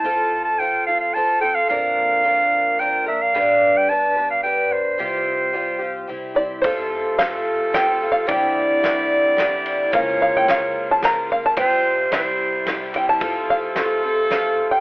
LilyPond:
<<
  \new Staff \with { instrumentName = "Clarinet" } { \time 3/4 \key f \major \tempo 4 = 109 a''8. a''16 g''8 f''16 f''16 a''8 g''16 f''16 | f''2 g''8 e''16 f''16~ | f''8. g''16 a''8. f''16 g''8 c''8~ | c''2~ c''8 r8 |
a'2. | d''2. | des''2~ des''8 r8 | c''4 c''4. r8 |
a'2. | }
  \new Staff \with { instrumentName = "Five-string banjo" } { \time 3/4 \key f \major r2. | r2. | r2. | r2 r8 d''8 |
c''4 f''4 \tuplet 3/2 { g''4 f''8 } | g''2 r4 | f''8 f''16 g''16 f''8. a''16 bes''8 f''16 a''16 | g''4 e''4. g''16 a''16~ |
a''8 f''4 r8 f''8. g''16 | }
  \new Staff \with { instrumentName = "Twelve-string acoustic guitar" } { \time 3/4 \key f \major <f c' f' a'>4 <f c' f' a'>8 <c' f' a'>8 <f c' f' a'>8 <c' f' a'>8 | <f bes d' bes'>4 <f bes d' bes'>4 <f bes d' bes'>8 <bes d' bes'>8 | <g, d g b d' b'>4 <g b d' b'>8 <g b d' b'>8 <g b d' b'>4 | <c g c' f' g'>4 <g c' f' g'>8 <c' f' g'>8 <g c' e' g'>8 <c' e' g'>8 |
<f c' f' a'>4 <f c' f' a'>4 <f c' f' a'>8 <c' f' a'>8 | <c g d' e' g'>4 <g d' e' g'>4 <g d' e' g'>4 | <des f bes f' bes'>4 <f bes f' bes'>4 <f bes f' bes'>8 <bes f' bes'>8 | <c f c' f' g'>4 <g c' e' g'>4 <g c' e' g'>8 <c' e' g'>8 |
<f c' f' a'>4 <f c' f' a'>8 <c' f' a'>8 <f c' f' a'>4 | }
  \new Staff \with { instrumentName = "Harmonium" } { \time 3/4 \key f \major r2. | r2. | r2. | r2. |
f'2. | e'2. | f'2.~ | f'4 e'2 |
f'2. | }
  \new Staff \with { instrumentName = "Harmonium" } { \clef bass \time 3/4 \key f \major << { r2. | r2. | r2. | r2. |
a2. | c'2. | bes2. | g2. |
a2. | } \\ { r2. | r2. | r2. | r2. |
c2. | d2. | des2. | c4 c2~ |
c2. | } >> }
  \new Staff \with { instrumentName = "Upright bass" } { \clef bass \time 3/4 \key f \major f,2. | f,2. | g,2. | c,2 c,4 |
f,2. | c,2. | des,2. | c,4 c,2 |
f,2. | }
  \new DrumStaff \with { instrumentName = "Drums" } \drummode { \time 3/4 r4 r4 r4 | r4 r4 r4 | r4 r4 r4 | r4 r4 r4 |
<bd cymr>4 <cymr sn>4 <cymr sn>4 | <bd cymr>4 <cymr sn>4 <cymr sn>8 cymr8 | <bd cymr>4 <cymr sn>4 <cymr sn>4 | <bd cymr>4 <cymr sn>4 <cymr sn>8 cymr8 |
<bd cymr>4 <cymr sn>4 <cymr sn>4 | }
>>